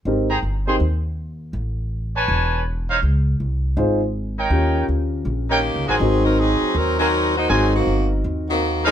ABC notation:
X:1
M:4/4
L:1/8
Q:"Swing" 1/4=161
K:Ab
V:1 name="Trumpet section"
z [Acgb] z [Acgc'] z4 | z3 [=B^c^g=a]3 z [E=c^cf] | z6 z [EBdg]- | [EBdg]2 z3 [EBdg] z [_GBca] |
[K:Abmix] z4 z [GBca] z2 | [GBca] z6 [E_cdf] |]
V:2 name="Grand piano"
[CEGB] z2 [CEGB] z4 | z8 | z4 [EFAc] z3 | [DFGB]4- [DFGB] z3 |
[K:Abmix] [CEGB]4- [CEGB] z3 | [CEGB]4- [CEGB] z3 |]
V:3 name="Saxophone section"
z8 | z8 | z8 | z4 z [E,B,DG]2 [_G,CEA]- |
[K:Abmix] [G,CEA] [G,CEB] [G,CEA]2 [G,CEB] [G,CEB]2 [B,EGc] | [G,CEA] [E,B,CG]2 z2 [E,B,CG]2 [F,_CEA] |]
V:4 name="Upright bass" clef=bass
A,,,2 G,,,2 E,,4 | =A,,,4 =E,,,4 | D,,2 C,,2 A,,,4 | E,,2 =D,,2 B,,,2- (3B,,, _D,, =A,,, |
[K:Abmix] A,,,3 z E,,4 | A,,,2 =G,,,2 E,,4 |]